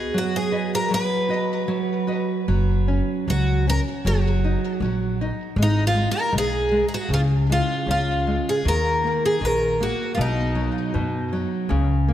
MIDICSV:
0, 0, Header, 1, 4, 480
1, 0, Start_track
1, 0, Key_signature, 6, "major"
1, 0, Tempo, 780234
1, 558, Time_signature, 2, 2, 24, 8
1, 2490, Tempo, 765306
1, 7561, End_track
2, 0, Start_track
2, 0, Title_t, "Twelve-string acoustic guitar"
2, 0, Program_c, 0, 25
2, 0, Note_on_c, 0, 68, 85
2, 104, Note_off_c, 0, 68, 0
2, 111, Note_on_c, 0, 66, 91
2, 219, Note_off_c, 0, 66, 0
2, 222, Note_on_c, 0, 68, 88
2, 433, Note_off_c, 0, 68, 0
2, 461, Note_on_c, 0, 70, 95
2, 572, Note_off_c, 0, 70, 0
2, 578, Note_on_c, 0, 71, 98
2, 1266, Note_off_c, 0, 71, 0
2, 2030, Note_on_c, 0, 66, 88
2, 2245, Note_off_c, 0, 66, 0
2, 2273, Note_on_c, 0, 70, 99
2, 2335, Note_off_c, 0, 70, 0
2, 2505, Note_on_c, 0, 66, 83
2, 3192, Note_off_c, 0, 66, 0
2, 3479, Note_on_c, 0, 63, 98
2, 3610, Note_off_c, 0, 63, 0
2, 3633, Note_on_c, 0, 65, 92
2, 3767, Note_off_c, 0, 65, 0
2, 3786, Note_on_c, 0, 70, 98
2, 3923, Note_off_c, 0, 70, 0
2, 3953, Note_on_c, 0, 68, 98
2, 4243, Note_off_c, 0, 68, 0
2, 4270, Note_on_c, 0, 68, 66
2, 4289, Note_off_c, 0, 68, 0
2, 4305, Note_on_c, 0, 66, 83
2, 4404, Note_off_c, 0, 66, 0
2, 4427, Note_on_c, 0, 65, 92
2, 4466, Note_off_c, 0, 65, 0
2, 4669, Note_on_c, 0, 65, 83
2, 4903, Note_off_c, 0, 65, 0
2, 4911, Note_on_c, 0, 65, 84
2, 5276, Note_off_c, 0, 65, 0
2, 5277, Note_on_c, 0, 68, 73
2, 5390, Note_off_c, 0, 68, 0
2, 5398, Note_on_c, 0, 70, 91
2, 5754, Note_off_c, 0, 70, 0
2, 5756, Note_on_c, 0, 68, 82
2, 5878, Note_off_c, 0, 68, 0
2, 5878, Note_on_c, 0, 70, 88
2, 6108, Note_off_c, 0, 70, 0
2, 6115, Note_on_c, 0, 66, 80
2, 6310, Note_off_c, 0, 66, 0
2, 6315, Note_on_c, 0, 65, 53
2, 6349, Note_off_c, 0, 65, 0
2, 6355, Note_on_c, 0, 63, 75
2, 7039, Note_off_c, 0, 63, 0
2, 7561, End_track
3, 0, Start_track
3, 0, Title_t, "Nylon-string guitar"
3, 0, Program_c, 1, 24
3, 0, Note_on_c, 1, 59, 67
3, 0, Note_on_c, 1, 66, 52
3, 0, Note_on_c, 1, 71, 44
3, 0, Note_on_c, 1, 75, 59
3, 71, Note_off_c, 1, 59, 0
3, 87, Note_on_c, 1, 54, 70
3, 226, Note_off_c, 1, 66, 0
3, 227, Note_off_c, 1, 71, 0
3, 229, Note_off_c, 1, 75, 0
3, 317, Note_on_c, 1, 66, 53
3, 321, Note_on_c, 1, 71, 50
3, 322, Note_on_c, 1, 75, 60
3, 544, Note_off_c, 1, 54, 0
3, 557, Note_on_c, 1, 54, 66
3, 699, Note_off_c, 1, 66, 0
3, 700, Note_off_c, 1, 71, 0
3, 702, Note_off_c, 1, 75, 0
3, 792, Note_on_c, 1, 66, 48
3, 797, Note_on_c, 1, 71, 40
3, 802, Note_on_c, 1, 75, 47
3, 1023, Note_off_c, 1, 54, 0
3, 1033, Note_on_c, 1, 54, 66
3, 1181, Note_off_c, 1, 66, 0
3, 1184, Note_off_c, 1, 71, 0
3, 1185, Note_off_c, 1, 75, 0
3, 1274, Note_on_c, 1, 66, 44
3, 1277, Note_on_c, 1, 71, 40
3, 1281, Note_on_c, 1, 75, 50
3, 1471, Note_off_c, 1, 66, 0
3, 1474, Note_off_c, 1, 71, 0
3, 1475, Note_off_c, 1, 75, 0
3, 1507, Note_off_c, 1, 54, 0
3, 1526, Note_on_c, 1, 54, 64
3, 1772, Note_on_c, 1, 61, 51
3, 2005, Note_off_c, 1, 61, 0
3, 2011, Note_off_c, 1, 54, 0
3, 2018, Note_on_c, 1, 54, 57
3, 2249, Note_off_c, 1, 54, 0
3, 2260, Note_on_c, 1, 61, 52
3, 2488, Note_off_c, 1, 61, 0
3, 2497, Note_on_c, 1, 54, 65
3, 2739, Note_on_c, 1, 63, 51
3, 2968, Note_off_c, 1, 54, 0
3, 2968, Note_off_c, 1, 63, 0
3, 2976, Note_on_c, 1, 54, 60
3, 3205, Note_off_c, 1, 54, 0
3, 3221, Note_on_c, 1, 63, 59
3, 3445, Note_off_c, 1, 63, 0
3, 3452, Note_on_c, 1, 56, 68
3, 3675, Note_off_c, 1, 56, 0
3, 3683, Note_on_c, 1, 56, 54
3, 3910, Note_off_c, 1, 56, 0
3, 3918, Note_on_c, 1, 56, 56
3, 4151, Note_off_c, 1, 56, 0
3, 4163, Note_on_c, 1, 56, 55
3, 4393, Note_off_c, 1, 56, 0
3, 4404, Note_on_c, 1, 49, 67
3, 4653, Note_on_c, 1, 56, 49
3, 4884, Note_off_c, 1, 56, 0
3, 4895, Note_on_c, 1, 61, 51
3, 5128, Note_off_c, 1, 61, 0
3, 5139, Note_on_c, 1, 56, 47
3, 5351, Note_off_c, 1, 49, 0
3, 5371, Note_off_c, 1, 56, 0
3, 5378, Note_on_c, 1, 51, 60
3, 5621, Note_on_c, 1, 58, 49
3, 5847, Note_off_c, 1, 51, 0
3, 5852, Note_off_c, 1, 58, 0
3, 5854, Note_on_c, 1, 51, 56
3, 6089, Note_off_c, 1, 51, 0
3, 6101, Note_on_c, 1, 58, 51
3, 6330, Note_on_c, 1, 47, 65
3, 6334, Note_off_c, 1, 58, 0
3, 6569, Note_on_c, 1, 54, 52
3, 6805, Note_off_c, 1, 47, 0
3, 6806, Note_off_c, 1, 54, 0
3, 6812, Note_on_c, 1, 47, 60
3, 7045, Note_off_c, 1, 47, 0
3, 7055, Note_on_c, 1, 54, 57
3, 7284, Note_on_c, 1, 49, 73
3, 7286, Note_off_c, 1, 54, 0
3, 7531, Note_on_c, 1, 58, 53
3, 7561, Note_off_c, 1, 49, 0
3, 7561, Note_off_c, 1, 58, 0
3, 7561, End_track
4, 0, Start_track
4, 0, Title_t, "Upright bass"
4, 0, Program_c, 2, 32
4, 0, Note_on_c, 2, 35, 104
4, 93, Note_off_c, 2, 35, 0
4, 93, Note_on_c, 2, 42, 92
4, 558, Note_off_c, 2, 42, 0
4, 558, Note_on_c, 2, 35, 104
4, 1037, Note_off_c, 2, 35, 0
4, 1037, Note_on_c, 2, 32, 80
4, 1353, Note_off_c, 2, 32, 0
4, 1526, Note_on_c, 2, 30, 86
4, 1842, Note_off_c, 2, 30, 0
4, 2015, Note_on_c, 2, 37, 88
4, 2326, Note_off_c, 2, 37, 0
4, 2490, Note_on_c, 2, 30, 91
4, 2803, Note_off_c, 2, 30, 0
4, 2964, Note_on_c, 2, 34, 92
4, 3275, Note_off_c, 2, 34, 0
4, 3440, Note_on_c, 2, 32, 103
4, 3750, Note_off_c, 2, 32, 0
4, 3920, Note_on_c, 2, 35, 86
4, 4231, Note_off_c, 2, 35, 0
4, 4396, Note_on_c, 2, 37, 88
4, 4713, Note_off_c, 2, 37, 0
4, 4884, Note_on_c, 2, 37, 80
4, 5202, Note_off_c, 2, 37, 0
4, 5378, Note_on_c, 2, 39, 87
4, 5690, Note_off_c, 2, 39, 0
4, 5854, Note_on_c, 2, 34, 79
4, 6169, Note_off_c, 2, 34, 0
4, 6333, Note_on_c, 2, 35, 95
4, 6647, Note_off_c, 2, 35, 0
4, 6816, Note_on_c, 2, 42, 86
4, 7125, Note_off_c, 2, 42, 0
4, 7292, Note_on_c, 2, 37, 102
4, 7561, Note_off_c, 2, 37, 0
4, 7561, End_track
0, 0, End_of_file